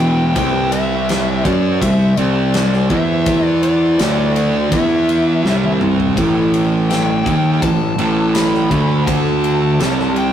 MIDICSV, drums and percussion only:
0, 0, Header, 1, 2, 480
1, 0, Start_track
1, 0, Tempo, 726392
1, 243, Time_signature, 4, 2, 24, 8
1, 6824, End_track
2, 0, Start_track
2, 0, Title_t, "Drums"
2, 0, Note_on_c, 9, 51, 60
2, 66, Note_off_c, 9, 51, 0
2, 236, Note_on_c, 9, 51, 95
2, 238, Note_on_c, 9, 36, 102
2, 302, Note_off_c, 9, 51, 0
2, 304, Note_off_c, 9, 36, 0
2, 476, Note_on_c, 9, 51, 80
2, 542, Note_off_c, 9, 51, 0
2, 721, Note_on_c, 9, 51, 86
2, 729, Note_on_c, 9, 38, 97
2, 787, Note_off_c, 9, 51, 0
2, 795, Note_off_c, 9, 38, 0
2, 959, Note_on_c, 9, 36, 104
2, 960, Note_on_c, 9, 51, 73
2, 1025, Note_off_c, 9, 36, 0
2, 1026, Note_off_c, 9, 51, 0
2, 1200, Note_on_c, 9, 36, 91
2, 1204, Note_on_c, 9, 51, 99
2, 1266, Note_off_c, 9, 36, 0
2, 1270, Note_off_c, 9, 51, 0
2, 1436, Note_on_c, 9, 51, 71
2, 1502, Note_off_c, 9, 51, 0
2, 1678, Note_on_c, 9, 51, 93
2, 1686, Note_on_c, 9, 38, 127
2, 1744, Note_off_c, 9, 51, 0
2, 1752, Note_off_c, 9, 38, 0
2, 1804, Note_on_c, 9, 38, 31
2, 1870, Note_off_c, 9, 38, 0
2, 1915, Note_on_c, 9, 51, 62
2, 1918, Note_on_c, 9, 36, 94
2, 1981, Note_off_c, 9, 51, 0
2, 1984, Note_off_c, 9, 36, 0
2, 2155, Note_on_c, 9, 51, 92
2, 2157, Note_on_c, 9, 36, 105
2, 2221, Note_off_c, 9, 51, 0
2, 2223, Note_off_c, 9, 36, 0
2, 2398, Note_on_c, 9, 51, 76
2, 2464, Note_off_c, 9, 51, 0
2, 2639, Note_on_c, 9, 51, 89
2, 2647, Note_on_c, 9, 38, 114
2, 2705, Note_off_c, 9, 51, 0
2, 2713, Note_off_c, 9, 38, 0
2, 2880, Note_on_c, 9, 51, 73
2, 2947, Note_off_c, 9, 51, 0
2, 3118, Note_on_c, 9, 36, 107
2, 3118, Note_on_c, 9, 51, 90
2, 3184, Note_off_c, 9, 36, 0
2, 3184, Note_off_c, 9, 51, 0
2, 3362, Note_on_c, 9, 51, 61
2, 3428, Note_off_c, 9, 51, 0
2, 3606, Note_on_c, 9, 38, 72
2, 3672, Note_off_c, 9, 38, 0
2, 3725, Note_on_c, 9, 48, 63
2, 3791, Note_off_c, 9, 48, 0
2, 3839, Note_on_c, 9, 45, 86
2, 3906, Note_off_c, 9, 45, 0
2, 3964, Note_on_c, 9, 43, 84
2, 4030, Note_off_c, 9, 43, 0
2, 4078, Note_on_c, 9, 36, 99
2, 4080, Note_on_c, 9, 51, 91
2, 4144, Note_off_c, 9, 36, 0
2, 4146, Note_off_c, 9, 51, 0
2, 4319, Note_on_c, 9, 51, 75
2, 4385, Note_off_c, 9, 51, 0
2, 4563, Note_on_c, 9, 51, 84
2, 4571, Note_on_c, 9, 38, 97
2, 4629, Note_off_c, 9, 51, 0
2, 4637, Note_off_c, 9, 38, 0
2, 4798, Note_on_c, 9, 36, 104
2, 4803, Note_on_c, 9, 51, 60
2, 4864, Note_off_c, 9, 36, 0
2, 4870, Note_off_c, 9, 51, 0
2, 5037, Note_on_c, 9, 36, 99
2, 5039, Note_on_c, 9, 51, 91
2, 5103, Note_off_c, 9, 36, 0
2, 5105, Note_off_c, 9, 51, 0
2, 5277, Note_on_c, 9, 51, 71
2, 5343, Note_off_c, 9, 51, 0
2, 5516, Note_on_c, 9, 51, 97
2, 5524, Note_on_c, 9, 38, 118
2, 5582, Note_off_c, 9, 51, 0
2, 5590, Note_off_c, 9, 38, 0
2, 5644, Note_on_c, 9, 38, 32
2, 5710, Note_off_c, 9, 38, 0
2, 5756, Note_on_c, 9, 36, 96
2, 5757, Note_on_c, 9, 51, 70
2, 5822, Note_off_c, 9, 36, 0
2, 5823, Note_off_c, 9, 51, 0
2, 5996, Note_on_c, 9, 36, 96
2, 5997, Note_on_c, 9, 51, 105
2, 6062, Note_off_c, 9, 36, 0
2, 6063, Note_off_c, 9, 51, 0
2, 6238, Note_on_c, 9, 51, 69
2, 6304, Note_off_c, 9, 51, 0
2, 6478, Note_on_c, 9, 51, 83
2, 6486, Note_on_c, 9, 38, 101
2, 6544, Note_off_c, 9, 51, 0
2, 6552, Note_off_c, 9, 38, 0
2, 6605, Note_on_c, 9, 38, 30
2, 6671, Note_off_c, 9, 38, 0
2, 6715, Note_on_c, 9, 51, 64
2, 6781, Note_off_c, 9, 51, 0
2, 6824, End_track
0, 0, End_of_file